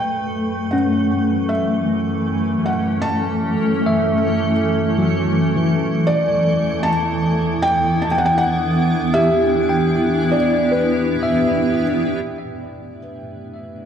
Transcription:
Already playing: F#2 E3 A3 B4 G5
0.71 C#4 F#5
1.00 C#4
1.49 E5
1.66 A4
2.09 E4
2.66 F#5
3.02 A5
3.86 E5
4.98 F#3
5.56 E3
6.07 E2 D5
6.20 B3
6.83 A5
6.91 D4
7.62 G5
8.02 A5
8.11 G5
8.18 F#5
8.26 G5
8.38 F#5
8.85 G4
9.14 G4 E5
9.69 G5
10.32 D5
10.71 B4
11.23 E5
12.22 A3
12.26 D4

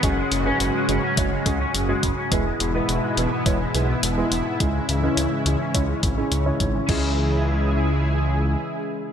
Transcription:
Already playing: F#4
0.03 F#1 G#2 C#3 F#3 G#3 C#4 F#4 G#4, kick, closed hi-hat
0.17 G#3
0.32 F#1 C#3, closed hi-hat
0.46 G#3 C#4 F#4 B4
0.60 F#1 C#3, closed hi-hat
0.74 G#3
0.89 F#1 C#3 G#3 C#4 F#4 G#4, closed hi-hat
1.03 C#4
1.17 F#1 C#3 G#3 C#4 F#4 C#5, kick, closed hi-hat
1.32 G#3
1.46 C#2 C#3 G#3 C#4 F#4 G#4, kick, closed hi-hat
1.60 C#4
1.74 F#1 C#3, closed hi-hat
1.89 G#3 C#4 F#4 G#4
2.03 F#1 C#3, kick, closed hi-hat
2.17 C#4
2.32 E1 B2 E3 G#3 B3 E4 G#4, kick, closed hi-hat
2.46 G#3
2.60 E1 B2, closed hi-hat
2.75 G#3 B3 E4 B4
2.89 E1 B2, closed hi-hat
3.03 G#3
3.17 E1 B2 G#3 B3 E4 G#4, closed hi-hat
3.32 B3
3.46 E1 B2 G#3 B3 E4 C#5, kick, closed hi-hat
3.60 G#3
3.74 B1 B2 G#3 B3 E4 G#4, closed hi-hat
3.89 B3
4.03 E1 B2, closed hi-hat
4.17 G#3 B3 E4 G#4
4.32 E1 B2, closed hi-hat
4.46 B3
4.60 C#2 C#3 E3 G#3 C#4 E4 G#4, kick, closed hi-hat
4.75 G#3
4.89 C#2 C#3, closed hi-hat
5.03 G#3 C#4 E4 B4
5.17 C#2 C#3, closed hi-hat
5.32 G#3
5.46 C#2 C#3 G#3 C#4 E4 G#4, closed hi-hat
5.60 C#4
5.74 C#2 C#3 G#3 C#4 E4 C#5, kick, closed hi-hat
5.89 G#3
6.03 G#1 C#3, kick, closed hi-hat
6.17 G#3 C#4 E4 G#4
6.31 C#2 C#3, closed hi-hat
6.46 G#3 C#4 E4 C#5
6.60 G#1 C#3, kick, closed hi-hat
6.75 C#4
6.89 C#2 C#3 E3 G#3 C#4 E4 G#4, kick, crash

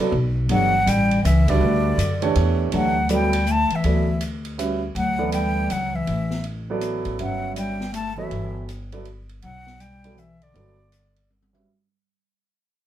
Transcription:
0.00 F#3 B3 E4 A4 D5
0.12 B1
0.48 G1 E3 F#3 A3 D4 G4 C#5 F#5, ride
0.86 A1 G3 G5, hi-hat pedal, ride
1.11 ride
1.23 C#2 E3 E5, hi-hat pedal, ride
1.46 D3 G3 D4 F#4 B4 D5 E5, kick, ride
1.61 D2
1.97 F#2, hi-hat pedal, ride
2.22 E3 A3 D4 G4 C#5, ride
2.35 E2, ride
2.72 D2 E3 F#3 A3 D4 G4 C#5 F#5, ride
3.09 F#3 G3 B3 E4 A4 D5, hi-hat pedal, ride
3.14 G5
3.33 ride
3.46 A3, hi-hat pedal
3.51 A5
3.70 E3, muted upright bass stroke, ride
3.75 E5
3.84 D2 F#3 B3 E4 A4 D5, ride
4.21 hi-hat pedal, ride
4.45 ride
4.58 G3 C#4 F#4 B4 E5, hi-hat pedal, ride
4.95 D2 F#3 F#5, ride
5.19 E3 B3 E4 A4 D5
5.32 G3 G5, hi-hat pedal, ride
5.70 C#2 F#3 F#5, hi-hat pedal, ride
5.94 E3 E5
6.07 A1, ride
6.30 snare
6.44 ride
6.70 F#3 B3 E4 A4 D5
6.81 hi-hat pedal, ride
7.05 A1, ride
7.19 G1 F#3 C#4 F#4 B4 E5 F#5, ride
7.55 G3 G5, hi-hat pedal, ride
7.80 snare
7.92 A3 A5, hi-hat pedal, ride
8.15 E3 F#3 B3 E4 A4 C#5 E5
8.31 G1, ride
8.69 hi-hat pedal, ride
8.92 F#3 B3 E4 A4 D5, ride
9.05 ride
9.29 ride
9.42 B1 F#3 F#5, ride
9.67 snare
9.80 G3 G5, hi-hat pedal, ride
10.04 F#3 B3 E4 A4 D5, ride
10.16 E3 E5, hi-hat pedal
10.42 D3 D5, ride
10.54 G1 F#3 B3 E4 A4 D5, ride
10.92 hi-hat pedal, ride
11.16 ride
11.30 high tom
11.42 high tom
11.53 G3 C#4 F#4 B4 E5, high tom

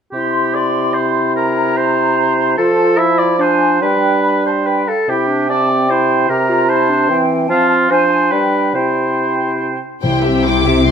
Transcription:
0.12 C3 E4 G4 C6
0.55 D5
0.94 C5
1.36 A#4 A#5
1.77 C5
2.58 F3 F4 A4 A5
2.96 E4 E5
3.19 D5
3.39 D4 C5 G#5
3.81 G3 D4 B4 G5
4.23 B5
4.44 C5 A5
4.65 B4 G5
4.87 A4 F5
5.07 C3 E4 G4 G5
5.28 D4
5.48 C4 D5 A5
5.68 G5
5.90 E4 C5
6.29 C3 G4 A#4 A#5
6.49 F4
6.68 E4 C5 A5
6.90 D4
7.09 E3 C4 G5
7.48 F3 C4 F4 A5
7.69 A5
7.89 F3 D4 C5 G#5
8.08 G#5
8.30 G3 D4 B4 G5
8.73 C3 E4 C5 G5
10.02 C2 C3 G3 C4 E4 C5 G5
10.24 C4 G4 E5
10.44 G3 E4 C5 G5 D6
10.65 C4 G4 E5
10.86 G3 E4 C5 G5 C6

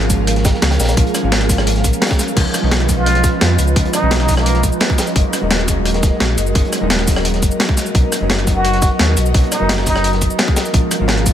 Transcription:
Already playing: G#1 C#4 G#4 A#4 F5
0.01 cross-stick, closed hi-hat
0.07 F3 G#3 A#3, kick, closed hi-hat, shaker
0.11 C#4 F4
0.27 cross-stick, closed hi-hat
0.36 snare, closed hi-hat
0.45 kick, snare, closed hi-hat, shaker
0.54 snare
0.62 C#2, snare, closed hi-hat
0.71 snare, closed hi-hat
0.80 A#1, snare, closed hi-hat, shaker
0.84 snare, closed hi-hat
0.89 snare, closed hi-hat, shaker
0.96 A#1 F3 G#3 A#3 C#4 F4, kick, closed hi-hat
1.07 closed hi-hat
1.15 cross-stick, closed hi-hat, shaker
1.22 G#1 F3 G#3 A#3 C#4 F4
1.32 snare, closed hi-hat
1.41 cross-stick, snare, closed hi-hat
1.47 F3 G#3 A#3, kick, snare, closed hi-hat, open hi-hat, shaker
1.51 C#4 F4
1.58 cross-stick, snare
1.67 closed hi-hat
1.76 snare, closed hi-hat
1.84 A#1, kick, closed hi-hat, shaker
1.93 closed hi-hat, shaker
2.01 snare, closed hi-hat
2.06 snare, closed hi-hat
2.10 kick, snare, closed hi-hat
2.19 snare, closed hi-hat, shaker
2.28 shaker
2.35 C#2 F3 G#3 B3 C#4 D#4 F4 B4 D#5, kick, closed hi-hat, crash
2.54 cross-stick, closed hi-hat, shaker
2.62 B1 F3 G#3 B3 C#4 D#4
2.71 snare, closed hi-hat
2.80 cross-stick, closed hi-hat
2.86 F3 G#3 B3, kick, closed hi-hat, shaker
2.90 C#4 D#4
2.98 F4
3.06 cross-stick, closed hi-hat
3.15 snare, closed hi-hat
3.23 kick, snare, closed hi-hat, shaker
3.41 F2, snare, closed hi-hat
3.59 C#2, closed hi-hat, shaker
3.68 shaker
3.75 C#2 F3 G#3 B3 C#4 D#4, kick, closed hi-hat
3.85 closed hi-hat
3.94 D#4, cross-stick, closed hi-hat, shaker
4.01 B1 F3 G#3 B3 C#4 D#4
4.11 snare, closed hi-hat
4.20 D#4, cross-stick, snare, closed hi-hat
4.26 F3 G#3 B3, kick, snare, closed hi-hat, open hi-hat, shaker
4.30 C#4 D#4
4.37 A#3, cross-stick, snare
4.46 closed hi-hat
4.54 snare, closed hi-hat
4.63 kick, closed hi-hat, shaker
4.72 shaker
4.80 snare, closed hi-hat
4.90 kick, closed hi-hat
4.98 snare, closed hi-hat, shaker
5.07 closed hi-hat, shaker
5.15 F#1 F#3 G#3 A#3 C#4 D#4 F#4 A#4, kick, closed hi-hat
5.33 cross-stick, closed hi-hat, shaker
5.41 D#1 F#3 G#3 A#3 C#4 D#4
5.51 snare, closed hi-hat
5.59 cross-stick, closed hi-hat
5.65 F#3 G#3 A#3, kick, closed hi-hat, shaker
5.70 C#4 D#4
5.86 cross-stick, closed hi-hat
5.94 snare, closed hi-hat
6.03 kick, snare, closed hi-hat, shaker
6.20 A#1, snare, closed hi-hat
6.38 F#1, closed hi-hat, shaker
6.47 shaker
6.54 F#1 F#3 G#3 A#3 C#4 D#4, kick, closed hi-hat
6.65 closed hi-hat
6.73 cross-stick, closed hi-hat, shaker
6.80 D#1 F#3 G#3 A#3 C#4 D#4
6.90 snare, closed hi-hat
6.99 cross-stick, snare, closed hi-hat
7.05 F#3 G#3 A#3, kick, snare, closed hi-hat, open hi-hat, shaker
7.09 C#4 D#4
7.16 cross-stick, snare
7.25 closed hi-hat
7.34 snare, closed hi-hat
7.42 F#1, kick, closed hi-hat, shaker
7.51 shaker
7.60 snare, closed hi-hat
7.69 kick, closed hi-hat
7.77 snare, closed hi-hat, shaker
7.86 shaker
7.93 B1 F#3 A#3 B3 C#4 D#4 F#4 D#5, kick, closed hi-hat
8.12 cross-stick, closed hi-hat, shaker
8.20 F#1 F#3 A#3 B3 C#4 D#4
8.30 snare, closed hi-hat
8.39 cross-stick, closed hi-hat
8.44 F#3 A#3 B3, kick, closed hi-hat, shaker
8.49 C#4 D#4
8.56 F#4
8.64 cross-stick, closed hi-hat
8.74 snare, closed hi-hat
8.82 kick, snare, closed hi-hat, shaker
8.99 D#2, snare, closed hi-hat
9.17 B1, closed hi-hat, shaker
9.26 shaker
9.33 B1 F#3 A#3 B3 C#4 D#4, kick, closed hi-hat
9.43 closed hi-hat
9.52 D#4, cross-stick, closed hi-hat, shaker
9.60 F#1 F#3 A#3 B3 C#4 D#4
9.69 snare, closed hi-hat
9.78 cross-stick, snare, closed hi-hat
9.84 F#3 A#3 B3 D#4, kick, snare, closed hi-hat, open hi-hat, shaker
9.88 C#4 D#4
9.96 cross-stick, snare
10.04 closed hi-hat
10.13 snare, closed hi-hat
10.21 kick, closed hi-hat, shaker
10.30 shaker
10.39 snare, closed hi-hat
10.47 kick, closed hi-hat
10.56 snare, closed hi-hat, shaker
10.65 closed hi-hat, shaker
10.73 A#1 F3 G#3 A#3 C#4 F4 G#4 A#4 F5, kick, closed hi-hat
10.91 cross-stick, closed hi-hat, shaker
10.99 G#1 F3 G#3 A#3 C#4 F4
11.08 snare, closed hi-hat
11.18 cross-stick, closed hi-hat
11.23 F3 G#3 A#3, kick, closed hi-hat, shaker
11.27 C#4 F4

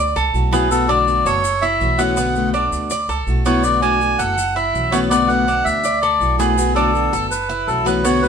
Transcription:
Already playing: D2 D5
0.16 C#2 A4, maracas
0.33 B1 F#3 A3 E4 F#4, maracas
0.51 F#3 A3 B3 E4 F#4 G#4, maracas
0.69 B2 D3 A3 B3 F#4 A4, maracas
0.87 D3 A3 B3 D4 F#4 D5, maracas
1.06 D3 A3 B3 F#4, maracas
1.25 F#1 A4 C#5, maracas
1.44 muted steel-string acoustic guitar stroke, maracas
1.62 E4 E5, maracas
1.80 B1 E3 A3 C#4 F#4, maracas
1.98 E3 A3 B3 C#4 F#4 F#5, maracas
2.17 B2 D3 A3 B3 F#4, maracas
2.35 D3 A3 B3 F#4, maracas
2.54 D3 A3 B3 D4 F#4, maracas
2.71 D2, maracas
2.90 D5, muted steel-string acoustic guitar stroke, maracas
3.09 C#2 A4, maracas
3.27 B1 F#3 A3 E4 F#4, maracas
3.45 F#3 A3 B3 E4 F#4 C#5, maracas
3.63 B2 D3 A3 B3 F#4 D5, maracas
3.82 D3 A3 B3 D4 F#4 G#5, maracas
4.00 D3 A3 B3 F#4, maracas
4.18 F#1 A4 F#5, maracas
4.37 muted steel-string acoustic guitar stroke, maracas
4.56 E4 E5, maracas
4.73 B1 E3 A3 C#4 F#4, maracas
4.91 E3 A3 B3 C#4 F#4 C#5, maracas
5.09 B2 D3 A3 B3 F#4 D5, maracas
5.28 D3 A3 B3 F#4 F#5, maracas
5.46 D3 A3 B3 D4 F#4, maracas
5.65 D2 E5, maracas
5.83 D5, muted steel-string acoustic guitar stroke, maracas
6.01 A4 D5, maracas
6.19 B1 F#3 A3 E4 F#4, maracas
6.38 F#3 A3 B3 E4 F#4 G#4, maracas
6.56 B2 D3 A3 B3 F#4, maracas
6.75 D3 A3 B3 D4 F#4 A4, maracas
6.93 D3 A3 B3 F#4, maracas
7.12 F#1 A4, maracas
7.31 B4, muted steel-string acoustic guitar stroke, maracas
7.49 E4, maracas
7.67 B1 E3 A3 C#4 F#4 A4, maracas
7.85 E3 A3 B3 C#4 F#4 B4, maracas
8.03 B2 D3 A3 B3 F#4 C#5, maracas
8.22 D3 A3 B3 F#4 B4, maracas

